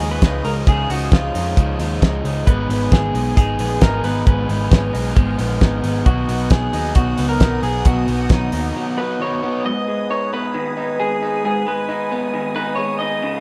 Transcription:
Already playing: clean electric guitar C#3 F3 D#4 G#4, analog synth pad C#5 F5 D#6
0.00 picked electric bass D#2, overdriven electric guitar F3 G#3 D#4
0.11 clean electric guitar B4
0.22 picked electric bass C#2, overdriven electric guitar C#3 F3 G#3 D#4, kick, snare, closed hi-hat
0.45 picked electric bass C#2, overdriven electric guitar F3 G#3 D#4, clean electric guitar A#4, open hi-hat
0.67 picked electric bass C#2, overdriven electric guitar C#3 F3 G#3 D#4, clean electric guitar G#4, kick, closed hi-hat
0.89 picked electric bass C#2, overdriven electric guitar F3 G#3 D#4, clean electric guitar F#4, open hi-hat
1.11 picked electric bass C#2, overdriven electric guitar C#3 F3 G#3 D#4, clean electric guitar F4, kick, snare, closed hi-hat
1.34 picked electric bass F2, overdriven electric guitar F3 G#3 D#4, open hi-hat
1.56 picked electric bass C#2, overdriven electric guitar C#3 F3 G#3 D#4, kick, closed hi-hat
1.79 picked electric bass D#2, overdriven electric guitar F3 G#3 D#4, open hi-hat
2.01 picked electric bass C#2, overdriven electric guitar C#3 F3 G#3 D#4, kick, snare, closed hi-hat
2.23 picked electric bass C#2, overdriven electric guitar F3 G#3 D#4, open hi-hat
2.46 picked electric bass G#1, overdriven electric guitar G#2 D#3 G#3 B3 D#4, analog synth pad B3 G#5 D#6, clean electric guitar B4, kick, closed hi-hat
2.69 picked electric bass G#1, overdriven electric guitar G#3 B3 D#4, open hi-hat
2.90 picked electric bass G#1, overdriven electric guitar D#3 G#3 B3 D#4, clean electric guitar G#4, kick, snare, closed hi-hat
3.14 picked electric bass B1, overdriven electric guitar G#3 B3 D#4, open hi-hat
3.36 picked electric bass G#1, overdriven electric guitar G#2 D#3 G#3 B3 D#4, clean electric guitar G#4, kick, closed hi-hat
3.59 picked electric bass A#1, overdriven electric guitar G#3 B3 D#4, open hi-hat
3.80 picked electric bass G#1, overdriven electric guitar D#3 G#3 B3 D#4, clean electric guitar A#4, kick, snare, closed hi-hat
4.03 picked electric bass G#1, overdriven electric guitar G#3 B3 D#4, clean electric guitar B4, open hi-hat
4.26 picked electric bass G#1, overdriven electric guitar G#2 D#3 G#3 B3 D#4, clean electric guitar B4, analog synth pad F6, kick, closed hi-hat
4.48 picked electric bass G#1, overdriven electric guitar G#3 B3 D#4, open hi-hat
4.70 picked electric bass G#1, overdriven electric guitar D#3 G#3 B3 D#4, kick, snare, closed hi-hat
4.93 picked electric bass B1, overdriven electric guitar G#3 B3 D#4, open hi-hat
5.15 picked electric bass G#1, overdriven electric guitar G#2 D#3 G#3 B3 D#4, kick, closed hi-hat
5.37 picked electric bass A#1, overdriven electric guitar G#3 B3 D#4, open hi-hat
5.61 picked electric bass G#1, overdriven electric guitar D#3 G#3 B3 D#4, kick, snare, closed hi-hat
5.82 picked electric bass G#1, overdriven electric guitar G#3 B3 D#4, open hi-hat
6.06 picked electric bass B1, overdriven electric guitar B2 D#3 F#3 B3 D#4, clean electric guitar F#4, analog synth pad F#5 D#6, kick, closed hi-hat
6.27 picked electric bass B1, overdriven electric guitar F#3 B3 D#4, open hi-hat
6.50 overdriven electric guitar D#3 F#3 B3 D#4, clean electric guitar G#4, kick, snare, closed hi-hat
6.72 picked electric bass D#2, overdriven electric guitar F#3 B3 D#4, open hi-hat
6.94 picked electric bass B1, overdriven electric guitar B2 D#3 F#3 B3 D#4, clean electric guitar F#4, kick, closed hi-hat
7.17 picked electric bass C#2, overdriven electric guitar F#3 B3 D#4, open hi-hat
7.29 clean electric guitar A#4
7.39 picked electric bass B1, overdriven electric guitar D#3 F#3 B3 D#4, kick, snare, closed hi-hat
7.62 picked electric bass B1, overdriven electric guitar F#3 B3 D#4, clean electric guitar G#4, open hi-hat
7.85 picked electric bass B1, overdriven electric guitar B2 D#3 F#3 B3 D#4, clean electric guitar F#4, kick, closed hi-hat
8.07 picked electric bass B1, overdriven electric guitar F#3 B3 D#4, open hi-hat
8.29 picked electric bass B1, overdriven electric guitar D#3 F#3 B3 D#4, clean electric guitar D#4, kick, snare, closed hi-hat
8.52 picked electric bass D#2, overdriven electric guitar F#3 B3 D#4, open hi-hat
8.75 overdriven electric guitar B2 D#3 F#3 B3 D#4
8.97 overdriven electric guitar F#3 B3 D#4, clean electric guitar B4
9.19 overdriven electric guitar D#3 F#3 B3 D#4, clean electric guitar C#5
9.42 overdriven electric guitar F#3 B3 D#4
9.64 clean electric guitar G#2 D#5, analog synth pad B4 G#5 D#6
9.88 clean electric guitar G#3
10.10 clean electric guitar D#4 C#5
10.33 clean electric guitar B3 B4
10.54 clean electric guitar D#3
10.77 clean electric guitar D#4
10.99 clean electric guitar G#3 G#4
11.22 clean electric guitar D#4
11.45 clean electric guitar G#2 G#4
11.67 clean electric guitar G#3 B4
11.89 clean electric guitar D#4
12.12 clean electric guitar B3
12.34 clean electric guitar D#3
12.56 clean electric guitar D#4 B4
12.76 clean electric guitar G#3 C#5
12.99 clean electric guitar D#4 D#5
13.22 clean electric guitar C#3, analog synth pad C#5 F5

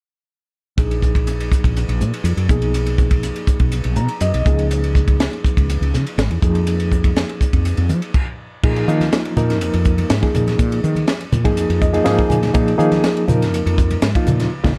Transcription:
0.77 fretless electric bass A#1, reed electric piano F3 A#3 D#4 G#4, kick, hi-hat pedal, ride
0.91 ride
1.02 kick, hi-hat pedal
1.15 kick, ride
1.27 hi-hat pedal, ride
1.40 ride
1.52 kick, hi-hat pedal
1.64 fretless electric bass A#1, kick, ride
1.76 hi-hat pedal, ride
1.88 fretless electric bass A#1, ride
2.01 fretless electric bass A#2, hi-hat pedal
2.14 ride
2.24 fretless electric bass F2, hi-hat pedal, ride
2.37 fretless electric bass F#2, ride
2.48 fretless electric bass B1, reed electric piano F3 A#3 D#4 G#4, kick, hi-hat pedal
2.62 ride
2.74 hi-hat pedal, ride
2.86 ride
2.98 kick, hi-hat pedal
3.11 kick, ride
3.23 hi-hat pedal, ride
3.36 ride
3.47 kick, hi-hat pedal
3.60 fretless electric bass B1, kick, ride
3.72 hi-hat pedal, ride
3.84 fretless electric bass B1, ride
3.96 fretless electric bass B2, reed electric piano A#5, hi-hat pedal
4.08 ride
4.21 fretless electric bass F#2, reed electric piano D#5, hi-hat pedal, ride
4.34 fretless electric bass B1, ride
4.45 fretless electric bass C#2, reed electric piano F3 A#3 D#4 G#4, kick, hi-hat pedal
4.59 ride
4.71 hi-hat pedal, ride
4.84 ride
4.95 kick, hi-hat pedal
5.08 kick, ride
5.20 snare, hi-hat pedal, ride
5.33 ride
5.44 kick, hi-hat pedal
5.57 fretless electric bass C#2, kick, ride
5.70 hi-hat pedal, ride
5.81 fretless electric bass C#2, ride
5.93 fretless electric bass C#3, snare, hi-hat pedal
6.07 ride
6.18 fretless electric bass G#1, snare, hi-hat pedal, ride
6.30 fretless electric bass E2, ride
6.42 fretless electric bass F2, reed electric piano F3 A#3 D#4 G#4, kick, hi-hat pedal
6.55 ride
6.67 hi-hat pedal, ride
6.80 ride
6.92 kick, hi-hat pedal
7.04 kick, ride
7.16 snare, hi-hat pedal, ride
7.29 ride
7.41 kick, hi-hat pedal
7.53 fretless electric bass F2, kick, ride
7.65 hi-hat pedal, ride
7.77 fretless electric bass F2, ride
7.89 fretless electric bass F3, hi-hat pedal
8.02 ride
8.14 kick, crash
8.63 fretless electric bass A#2, reed electric piano F3 A#3 D#4 G#4, kick, crash
8.76 ride
8.88 fretless electric bass D#3, reed electric piano F3 A#3 D#4 F4, hi-hat pedal
9.01 snare, ride, high conga
9.12 snare, hi-hat pedal, ride
9.25 ride
9.37 fretless electric bass A#2, reed electric piano F3 A#3 D#4 A#4, hi-hat pedal, high conga, low conga
9.50 snare, ride
9.61 fretless electric bass F2, hi-hat pedal, ride
9.74 fretless electric bass F2, ride
9.85 kick, hi-hat pedal
9.98 ride, high conga
10.10 fretless electric bass G#2, snare, hi-hat pedal, ride
10.22 reed electric piano F3 A#3 D#4 G#4, kick, snare, ride, high conga
10.35 fretless electric bass A#2, hi-hat pedal, low conga
10.47 snare, ride, high conga
10.59 fretless electric bass A#2, kick, hi-hat pedal, ride
10.72 ride
10.84 fretless electric bass D#3, hi-hat pedal
10.95 ride, high conga
11.08 snare, hi-hat pedal, ride
11.21 ride
11.32 fretless electric bass A#2, hi-hat pedal, high conga, low conga
11.44 reed electric piano F3 A#3 D#4 G#4, kick, ride
11.57 fretless electric bass F2, hi-hat pedal, ride
11.70 fretless electric bass F2, ride
11.82 reed electric piano D#5, kick, hi-hat pedal
11.93 reed electric piano F3 A#3 D#4 G#4, ride, high conga
12.04 fretless electric bass G#2, reed electric piano F3 A#3 D#4 G#4 F5, snare, hi-hat pedal, ride
12.18 kick, ride, high conga
12.29 fretless electric bass A#2, reed electric piano G#5, hi-hat pedal, low conga
12.43 snare, ride, high conga
12.54 fretless electric bass A#2, reed electric piano F3 A#3 D#4 G#4, kick, hi-hat pedal, ride
12.68 ride
12.78 fretless electric bass D#3, reed electric piano F3 A#3 D#4 G#4, hi-hat pedal
12.92 snare, ride, high conga
13.04 snare, hi-hat pedal, ride
13.17 ride
13.28 fretless electric bass A#2, reed electric piano F3 A#3 D#4 A#4, hi-hat pedal, high conga, low conga
13.42 snare, ride
13.53 fretless electric bass F2, hi-hat pedal, ride
13.66 fretless electric bass F2, ride
13.78 kick, hi-hat pedal
13.90 ride, high conga
14.02 fretless electric bass G#2, snare, hi-hat pedal, ride
14.15 reed electric piano F3 A#3 D#4 F4, kick, ride
14.27 fretless electric bass A#2, hi-hat pedal, low conga
14.40 snare, ride, high conga
14.64 fretless electric bass A#1, reed electric piano A#3 D#4 F4, kick, snare, low conga

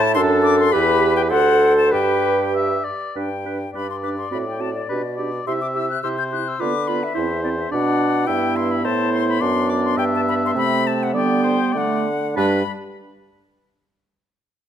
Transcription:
Already playing: bassoon A2, french horn E4, clarinet E4, flute A5
0.15 bassoon F#2, clarinet D4, oboe A4, french horn A4, flute C6
0.43 flute D6
0.59 flute C6
0.72 bassoon E2, clarinet G4, french horn G4, oboe B4, flute B5
1.16 flute G5
1.30 bassoon D2, clarinet A4, french horn A4, oboe C5, flute F#5
1.78 flute A5
1.91 bassoon G2, clarinet G4, oboe B4, french horn B4, flute G5
2.55 oboe E5
2.84 oboe D5
3.16 bassoon G2, french horn D4, clarinet B4, flute G5
3.45 french horn D4, clarinet B4
3.73 bassoon G2, french horn D4, clarinet B4, oboe D5, flute B5
3.90 flute C6
4.03 french horn D4, clarinet B4, flute D6
4.18 flute C6
4.31 bassoon A2, french horn C4, clarinet F#4, flute B5
4.48 flute G5
4.60 french horn C4, clarinet F#4, flute A5
4.74 flute D5
4.89 bassoon B2, french horn D4, clarinet G4, oboe B4
5.16 french horn D4, clarinet G4, oboe D5
5.47 bassoon C3, french horn E4, clarinet G4, oboe E5, flute C6
5.61 flute D6
5.74 french horn E4, clarinet G4, flute E6
5.90 flute F#6
6.02 bassoon C3, french horn E4, clarinet G4, oboe C5, flute E6
6.18 flute G6
6.31 french horn E4, clarinet G4, flute F#6
6.48 flute E6
6.60 bassoon D3, french horn B3, clarinet F4, oboe B4, flute D6
6.88 french horn B3, clarinet F4, flute B5
7.03 flute E5
7.15 bassoon E2, french horn C4, clarinet E4, oboe C5
7.43 french horn C4, clarinet E4, flute D5
7.59 flute E5
7.70 bassoon B2, clarinet D4, french horn D4, oboe D5, flute F#5
8.26 bassoon G2, french horn B3, clarinet E4, oboe E5, flute G5
8.56 flute C6
8.71 flute B5
8.84 bassoon A2, clarinet E4, oboe C5, flute A5
9.13 flute C6
9.29 flute B5
9.40 bassoon F#2, clarinet D4, oboe D5, flute C6
9.70 flute D6
9.85 flute C6
9.97 bassoon G2, oboe E5, flute G5
10.15 flute A5
10.29 flute B5
10.46 flute C6
10.55 bassoon C3, french horn A3, clarinet C4, flute B5
10.87 flute A5
11.03 flute F#5
11.14 bassoon D3, french horn G3, clarinet B3, oboe D5, flute G5
11.44 oboe C5
11.73 bassoon D3, french horn A3, clarinet A3, oboe D5
11.77 flute F#5
12.36 bassoon G2, french horn G3, clarinet D4, oboe B4, flute B5

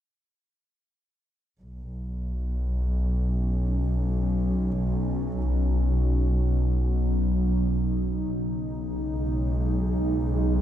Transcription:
1.61 double bass section B1, ambient pad B2
2.38 ambient pad F#3
2.72 ambient pad C#4
3.03 ambient pad D#4
8.31 double bass section B1, ambient pad C#3
8.57 ambient pad G#3
10.32 ambient pad F4

